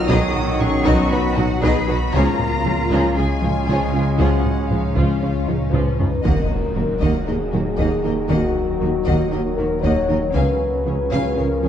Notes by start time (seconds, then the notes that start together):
Already playing: B1 D#3 F#3 B3 F#4 D#5
0.08 B1 F#3 B3 D#4 G#4 B4 D#5 D#6, taiko
0.35 F#4, taiko low-mid
0.60 B1 F#3 C#4 D#4 F#4 G#4 C#6, taiko low-mid
0.85 B1 F#3 B3 D#4 F#4 B4 D#5, taiko
1.11 B1 F#3 B3 D#4 F#4 B4 B5
1.37 B1 F#3 D#4 F#4 F#5, taiko low-mid
1.62 B1 F#3 B3 D#4 G#4 B4 D#5 B5, taiko
1.88 B1 F#3 D#4 F#4 B4
2.14 C#2 C#3 F3 G#3 A#3 C#4 F4 G#4 C#5 A#5, taiko
2.39 taiko low-mid
2.65 C#2 F3 C#4 F4, taiko low-mid
2.90 C#2 C#3 F3 F4 G#4 C#5, taiko
3.16 C#2 F3 G#3 C#4 F4 G#4 G#5
3.42 C#2 F3 C#4 F4, taiko low-mid
3.68 C#2 C#3 F3 F4 G#4 C#5, taiko
3.93 C#2 F3 C#4 F4 G#4
4.18 C#2 C#3 F3 F#3 C#4 F4 G#4 C#5 F#5, taiko
4.45 taiko low-mid
4.70 C#2 F3 D#4 F4 F5, taiko low-mid
4.96 C#2 C#3 F3 C#4 F4, taiko
5.22 C#2 F3 C#4 F4
5.47 C#2 F3 D#4 F4 G#4, taiko low-mid
5.73 C#2 C#3 F3 C#4 F4 B4, taiko low-mid
5.99 C#2 F3 C#4 D#4 F4, taiko low
6.23 D#1 D#2 D#3 F#3 A#3 D#4 A#4 D#5 F#5, taiko, impact
6.50 taiko low-mid
6.75 D#2 D#3 F#3 A#3 F#4 A#4, taiko low-mid
7.00 D#2 D#3 A#3 D#5 F#5, taiko
7.27 D#2 D#3 A#3 D#4 G#4 A#4 D#5
7.52 D#2 D#3 F#3 A#3 F#4 A#4, taiko low-mid
7.78 D#2 D#3 A#3 D#5 F#5, taiko
8.03 D#2 D#3 A#3 D#4 A#4 D#5
8.29 D#2 D#3 A#3 F#4 D#5 F#5, taiko
8.81 D#2 D#3 F#3 A#3 F#4 A#4
9.06 D#2 D#3 A#3 D#5 F#5, taiko
9.31 D#2 D#3 A#3 D#4 F#4 A#4 D#5
9.57 D#2 D#3 F#3 A#3 F#4 A#4
9.83 D#2 D#3 A#3 C#5 D#5 F#5, taiko
10.08 D#2 D#3 A#3 D#4 A#4 D#5
10.34 C#2 C#3 G#3 C#4 F4 G#4 B4 F5 G#5, taiko
10.85 C#2 C#3 F3 C#4 G#4 C#5
11.11 C#2 C#3 C#4 F5 G#5, taiko
11.36 C#2 C#3 F3 C#4 A#4 C#5 F5
11.62 C#2 C#3 F3 C#4 G#4 C#5